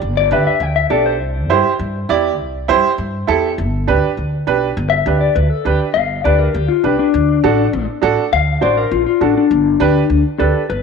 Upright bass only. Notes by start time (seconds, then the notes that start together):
0.02 G1
0.31 D2
0.60 D2
0.90 B1
1.20 C2
1.49 G2
1.79 G2
2.09 E2
2.39 C2
2.69 G2
2.98 G2
3.28 E2
3.58 G1
3.88 D2
4.17 D2
4.47 B1
4.77 G1
5.06 D2
5.36 D2
5.65 D2
5.95 G1
6.25 D2
6.54 D2
6.84 C2
7.14 D2
7.44 A1
7.73 A1
8.03 A1
8.33 D2
8.62 A1
8.91 A1
9.21 A1
9.51 G1
9.80 D2
10.10 D2
10.40 D2
10.70 G1